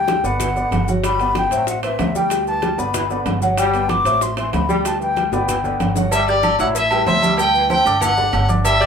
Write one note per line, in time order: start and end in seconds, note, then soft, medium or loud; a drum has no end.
0.00 0.18 D2 loud
0.00 0.27 G5 loud
0.08 0.21 G3 medium
0.08 0.22 G4 medium
0.08 0.22 G5 medium
0.08 high bongo medium
0.08 high conga medium
0.08 high timbale medium
0.08 low timbale medium
0.08 maracas soft
0.24 0.68 G1 medium
0.24 0.33 D3 medium
0.24 0.50 B3 medium
0.24 0.50 B4 medium
0.24 0.50 D5 medium
0.24 0.88 F#5 medium
0.24 high bongo soft
0.24 maracas medium
0.40 0.49 E3 medium
0.40 high bongo medium
0.40 high conga soft
0.40 low conga medium
0.40 high timbale medium
0.40 maracas medium
0.56 0.81 D3 medium
0.56 0.82 B3 medium
0.56 0.82 B4 medium
0.56 0.83 D5 medium
0.56 high bongo soft
0.56 high conga soft
0.56 maracas soft
0.71 1.45 G1 medium
0.71 high bongo soft
0.71 low bongo medium
0.71 high conga medium
0.71 high timbale medium
0.71 low timbale medium
0.71 maracas soft
0.88 1.14 F#3 medium
0.88 1.14 F#4 medium
0.88 1.15 F#5 medium
0.88 high bongo soft
0.88 high conga medium
0.88 maracas medium
1.04 1.29 G3 medium
1.04 1.34 B5 loud
1.04 high bongo medium
1.04 high conga soft
1.04 high timbale loud
1.04 maracas medium
1.19 1.46 B3 medium
1.19 1.46 B4 medium
1.19 1.46 D5 medium
1.19 high conga soft
1.19 high timbale medium
1.19 maracas soft
1.35 1.66 G5 medium
1.35 high bongo medium
1.35 high conga medium
1.35 high timbale medium
1.35 low timbale medium
1.35 maracas soft
1.51 1.95 A1 medium
1.51 1.68 F#3 medium
1.51 1.77 C4 medium
1.51 1.78 C5 medium
1.51 1.78 E5 medium
1.51 high bongo soft
1.51 high conga soft
1.51 high timbale medium
1.51 maracas medium
1.67 1.83 F#5 medium
1.67 high bongo medium
1.67 high conga soft
1.67 maracas medium
1.83 2.00 E3 medium
1.83 2.09 C4 medium
1.83 2.09 C5 medium
1.83 2.10 E5 medium
1.83 2.18 E5 medium
1.83 high bongo soft
1.83 high conga soft
1.83 high timbale loud
1.83 maracas soft
1.99 2.73 D2 loud
1.99 high bongo soft
1.99 low bongo medium
1.99 high conga medium
1.99 high timbale medium
1.99 low timbale loud
1.99 maracas soft
2.15 2.28 G3 medium
2.15 2.32 G3 medium
2.15 2.28 G4 medium
2.15 2.28 G5 medium
2.15 2.47 G5 medium
2.15 high bongo soft
2.15 high conga medium
2.15 maracas medium
2.30 2.57 G3 medium
2.30 2.57 G4 medium
2.30 2.58 G5 medium
2.30 high bongo medium
2.30 high conga soft
2.30 high timbale medium
2.30 maracas medium
2.47 2.63 E3 medium
2.47 2.80 A5 loud
2.47 high conga soft
2.47 maracas soft
2.62 2.76 G3 medium
2.62 2.76 G4 medium
2.62 2.76 G5 medium
2.62 high bongo medium
2.62 high conga medium
2.62 high timbale medium
2.62 low timbale medium
2.62 maracas soft
2.78 3.23 G1 medium
2.78 2.87 D3 medium
2.78 3.04 B3 medium
2.78 3.05 B4 medium
2.78 3.05 D5 medium
2.78 3.26 B5 medium
2.78 high bongo soft
2.78 high conga soft
2.78 maracas medium
2.94 3.03 E3 medium
2.94 high bongo medium
2.94 high conga soft
2.94 low conga medium
2.94 high timbale medium
2.94 maracas medium
3.10 3.36 D3 medium
3.10 3.36 B3 medium
3.10 3.36 B4 medium
3.10 3.37 D5 medium
3.10 high bongo soft
3.10 high conga soft
3.10 maracas soft
3.26 4.00 G1 loud
3.26 high bongo soft
3.26 low bongo medium
3.26 high conga medium
3.26 high timbale medium
3.26 low timbale medium
3.26 maracas soft
3.42 3.68 F#3 medium
3.42 3.68 F#4 medium
3.42 3.69 F#5 medium
3.42 high bongo soft
3.42 high conga medium
3.42 maracas medium
3.57 3.83 G3 loud
3.57 3.91 G5 loud
3.57 high bongo medium
3.57 high timbale loud
3.57 maracas medium
3.73 4.00 B3 medium
3.73 4.00 B4 medium
3.73 4.00 D5 medium
3.73 high conga soft
3.73 high timbale medium
3.73 maracas soft
3.89 4.24 D6 loud
3.89 high bongo medium
3.89 high conga loud
3.89 high timbale medium
3.89 low timbale medium
3.89 maracas soft
4.05 4.49 A1 medium
4.05 4.23 F#3 medium
4.05 4.31 C4 medium
4.05 4.32 C5 medium
4.05 4.32 E5 medium
4.05 high bongo soft
4.05 high conga soft
4.05 high timbale medium
4.05 maracas medium
4.21 4.38 C6 loud
4.21 high bongo medium
4.21 high conga soft
4.21 maracas medium
4.37 4.54 E3 medium
4.37 4.63 C4 medium
4.37 4.63 C5 medium
4.37 4.63 E5 medium
4.37 4.53 C6 medium
4.37 high bongo soft
4.37 high conga soft
4.37 high timbale loud
4.37 maracas soft
4.53 5.27 D2 loud
4.53 4.84 B5 medium
4.53 high bongo soft
4.53 low bongo medium
4.53 high conga medium
4.53 high timbale medium
4.53 low timbale medium
4.53 maracas soft
4.69 4.86 G3 medium
4.69 4.82 G3 medium
4.69 4.82 G4 medium
4.69 4.82 G5 medium
4.69 high bongo soft
4.69 high conga medium
4.69 maracas medium
4.85 5.11 G3 medium
4.85 5.11 G4 medium
4.85 5.11 G5 medium
4.85 5.00 A5 medium
4.85 high bongo medium
4.85 high conga soft
4.85 high timbale medium
4.85 maracas medium
5.00 5.17 E3 medium
5.00 5.31 G5 loud
5.00 high conga soft
5.00 maracas soft
5.17 5.30 G3 medium
5.17 5.30 G4 medium
5.17 5.30 G5 medium
5.17 high bongo medium
5.17 high conga medium
5.17 high timbale medium
5.17 low timbale medium
5.17 maracas soft
5.32 5.77 G1 medium
5.32 5.40 D3 medium
5.32 5.59 B3 medium
5.32 5.59 B4 medium
5.32 5.59 D5 medium
5.32 5.93 G5 medium
5.32 high bongo loud
5.32 maracas medium
5.48 5.56 E3 medium
5.48 high bongo medium
5.48 high conga soft
5.48 low conga medium
5.48 high timbale medium
5.48 maracas medium
5.64 5.90 D3 medium
5.64 5.90 B3 medium
5.64 5.91 B4 medium
5.64 5.91 D5 medium
5.64 high conga soft
5.64 low conga medium
5.64 maracas soft
5.80 6.54 G1 loud
5.80 low bongo medium
5.80 high conga medium
5.80 high timbale medium
5.80 low timbale medium
5.80 maracas soft
5.95 6.09 F#3 medium
5.95 6.10 F#4 medium
5.95 6.09 F#5 medium
5.95 low bongo medium
5.95 high conga medium
5.95 maracas medium
6.11 6.37 G3 medium
6.11 6.27 E5 medium
6.11 cowbell loud
6.11 high conga soft
6.11 low agogo loud
6.11 maracas loud
6.28 6.54 G4 medium
6.28 6.58 D5 loud
6.28 6.54 G5 medium
6.28 6.55 G6 medium
6.28 high conga soft
6.28 maracas soft
6.43 cowbell medium
6.43 high conga medium
6.43 low timbale medium
6.43 low agogo loud
6.43 maracas soft
6.59 7.03 A1 loud
6.59 6.75 F#3 medium
6.59 6.86 E4 medium
6.59 6.86 E5 medium
6.59 6.67 F#5 medium
6.59 6.86 E6 medium
6.59 cowbell medium
6.59 high conga soft
6.59 maracas medium
6.75 7.05 E5 medium
6.75 cowbell loud
6.75 high conga soft
6.75 low agogo medium
6.75 maracas loud
6.90 7.07 E3 medium
6.90 7.04 G3 medium
6.90 7.05 G4 medium
6.90 7.05 G5 medium
6.90 high conga soft
6.90 low agogo loud
6.90 maracas soft
7.06 7.80 D2 loud
7.06 7.33 C4 medium
7.06 7.33 C5 medium
7.06 7.36 E5 loud
7.06 7.33 C6 medium
7.06 cowbell medium
7.06 high conga medium
7.06 low timbale medium
7.06 maracas soft
7.22 7.39 G3 medium
7.22 cowbell medium
7.22 high conga medium
7.22 low agogo medium
7.22 maracas medium
7.38 7.64 G3 medium
7.38 7.65 G4 medium
7.38 7.68 G5 medium
7.38 7.65 G5 medium
7.38 cowbell loud
7.38 low agogo loud
7.38 maracas medium
7.54 7.71 E3 medium
7.54 high conga soft
7.54 maracas soft
7.70 7.83 C4 medium
7.70 7.83 C5 medium
7.70 8.00 G5 loud
7.70 7.83 C6 medium
7.70 cowbell medium
7.70 high conga medium
7.70 low timbale medium
7.70 low agogo medium
7.70 maracas soft
7.86 8.30 G1 loud
7.86 7.94 D3 medium
7.86 8.12 D4 medium
7.86 8.12 D5 medium
7.86 8.12 D6 medium
7.86 high conga soft
7.86 low agogo medium
7.86 maracas medium
8.01 8.10 E3 medium
8.01 8.46 F#5 loud
8.01 cowbell loud
8.01 high conga soft
8.01 low conga medium
8.01 low agogo loud
8.01 maracas loud
8.17 8.43 D3 medium
8.17 8.43 G4 medium
8.17 8.44 D5 medium
8.17 high conga soft
8.17 low conga medium
8.17 maracas soft
8.33 8.86 G1 loud
8.33 cowbell medium
8.33 high conga soft
8.33 low timbale loud
8.33 low agogo loud
8.33 maracas soft
8.49 8.75 D4 medium
8.49 8.75 D5 medium
8.49 8.75 D6 medium
8.49 cowbell medium
8.49 high conga medium
8.49 maracas medium
8.65 8.86 G3 medium
8.65 8.82 E5 loud
8.65 cowbell loud
8.65 low agogo loud
8.65 maracas loud
8.81 8.86 G4 medium
8.81 8.86 D5 loud
8.81 8.86 G5 medium
8.81 8.86 G6 medium
8.81 high conga soft
8.81 maracas soft